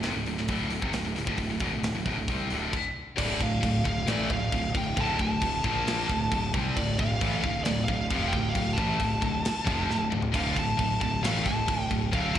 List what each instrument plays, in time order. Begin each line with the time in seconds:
0.03 picked electric bass F1, distorted electric guitar F2 C3, snare, open hi-hat
0.15 picked electric bass D1, distorted electric guitar D2 A2
0.26 picked electric bass D1, distorted electric guitar D2 A2, open hi-hat
0.38 picked electric bass D1, distorted electric guitar D2 A2, snare
0.48 picked electric bass D1, distorted electric guitar D2 A2 D3, kick, open hi-hat
0.70 picked electric bass D1, distorted electric guitar D2 A2, open hi-hat
0.81 picked electric bass F1, distorted electric guitar F2 C3, kick
0.93 picked electric bass D1, distorted electric guitar D2 A2, snare, open hi-hat
1.05 picked electric bass D1, distorted electric guitar D2 A2
1.16 picked electric bass D1, distorted electric guitar D2 A2, snare, open hi-hat
1.26 picked electric bass D1, distorted electric guitar D2 A2, kick
1.37 picked electric bass D1, distorted electric guitar D2 A2, kick, open hi-hat
1.50 picked electric bass D1, distorted electric guitar D2 A2
1.60 picked electric bass E1, distorted electric guitar E2 B2, kick, open hi-hat
1.72 picked electric bass D1, distorted electric guitar D2 A2
1.83 snare, open hi-hat
1.95 picked electric bass D1, distorted electric guitar D2 A2
2.06 picked electric bass D1, distorted electric guitar D2 A2, kick, open hi-hat
2.17 picked electric bass D1, distorted electric guitar D2 A2
2.28 picked electric bass C2, distorted electric guitar C3 G3 C4, kick, open hi-hat
2.49 picked electric bass D1, distorted electric guitar D2 A2 D3, open hi-hat
2.73 kick, crash
3.16 picked electric bass D1, distorted electric guitar D2 A2 D3, lead electric guitar D5, kick, crash
3.39 picked electric bass D1, distorted electric guitar D2 A2, lead electric guitar F5, kick, crash
3.61 picked electric bass D1, distorted electric guitar D2 A2, kick, crash
3.84 picked electric bass D1, distorted electric guitar D2 A2, lead electric guitar F5, kick, crash
4.07 picked electric bass A1, distorted electric guitar A2 E3 A3, lead electric guitar D5, snare, crash
4.30 picked electric bass D1, distorted electric guitar D2 A2, lead electric guitar F5, kick, crash
4.52 picked electric bass D1, distorted electric guitar D2 A2, kick, crash
4.74 picked electric bass D1, distorted electric guitar D2 A2, lead electric guitar G5, kick, crash
4.96 picked electric bass D1, distorted electric guitar D2 A2 D3, kick, crash
5.01 lead electric guitar A5
5.19 picked electric bass D1, distorted electric guitar D2 A2, lead electric guitar A5, kick, crash
5.41 picked electric bass D1, distorted electric guitar D2 A2, kick, crash
5.64 picked electric bass A#1, distorted electric guitar A#2 F3 A#3, kick, crash
5.87 snare, crash
6.09 picked electric bass D1, distorted electric guitar D2 A2, kick, crash
6.31 picked electric bass D1, distorted electric guitar D2 A2, kick, crash
6.54 picked electric bass C2, distorted electric guitar C3 G3 C4, kick, crash
6.76 picked electric bass D1, distorted electric guitar D2 A2, lead electric guitar D5, kick, crash
6.99 picked electric bass D1, distorted electric guitar D2 A2, lead electric guitar F5, kick, crash
7.21 picked electric bass A1, distorted electric guitar A2 E3 A3, kick, crash
7.42 picked electric bass D1, distorted electric guitar D2 A2, lead electric guitar F5, kick, crash
7.64 picked electric bass D1, distorted electric guitar D2 A2, lead electric guitar D5, snare, crash
7.85 picked electric bass D1, distorted electric guitar D2 A2, lead electric guitar F5, kick, crash
8.10 picked electric bass F1, distorted electric guitar F2 C3 F3, kick, crash
8.28 lead electric guitar G5
8.32 picked electric bass D1, distorted electric guitar D2 A2, kick, crash
8.49 lead electric guitar F5
8.55 picked electric bass D1, distorted electric guitar D2 A2, kick, crash
8.73 distorted electric guitar A2, lead electric guitar A5
8.78 picked electric bass A1, distorted electric guitar E3 A3, kick, crash
8.99 picked electric bass D1, distorted electric guitar D2 A2, kick, crash
9.21 picked electric bass D1, distorted electric guitar D2 A2, kick, crash
9.45 snare, crash
9.65 picked electric bass F1, distorted electric guitar F2 C3 F3, kick, crash
9.88 picked electric bass D1, distorted electric guitar D2 A2, snare
10.11 picked electric bass D1, distorted electric guitar D2 A2, mid tom
10.22 floor tom
10.32 picked electric bass D1, distorted electric guitar D2 A2 D3, lead electric guitar F5, kick, crash
10.55 picked electric bass D1, distorted electric guitar D2 A2, kick, crash
10.59 lead electric guitar A5
10.77 picked electric bass D1, distorted electric guitar D2 A2, kick, crash
11.00 picked electric bass D1, distorted electric guitar D2 A2, lead electric guitar A5, kick, crash
11.23 picked electric bass A1, distorted electric guitar A2 E3 A3, lead electric guitar F5, snare, crash
11.45 picked electric bass D1, distorted electric guitar D2 A2, lead electric guitar A5, kick, snare, crash
11.68 picked electric bass D1, distorted electric guitar D2 A2, kick, crash
11.91 picked electric bass D1, distorted electric guitar D2 A2, kick, crash
12.12 picked electric bass D1, distorted electric guitar D2 A2 D3, lead electric guitar F5, kick, crash
12.34 picked electric bass D1, distorted electric guitar D2 A2, lead electric guitar A5, kick, crash